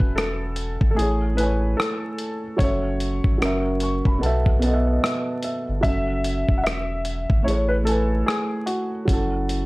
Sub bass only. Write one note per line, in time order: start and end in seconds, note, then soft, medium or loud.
0.01 0.77 E1 medium
0.82 0.96 G#1 medium
0.98 1.75 A1 loud
2.60 3.20 F#1 loud
3.25 3.40 G#1 loud
3.41 4.02 F#1 loud
4.06 4.21 E1 medium
4.22 4.99 B1 loud
5.68 5.83 G1 medium
5.84 6.44 F#1 loud
6.49 7.26 E1 medium
7.30 7.45 G#1 loud
7.47 8.23 A1 loud
9.08 9.66 F#1 medium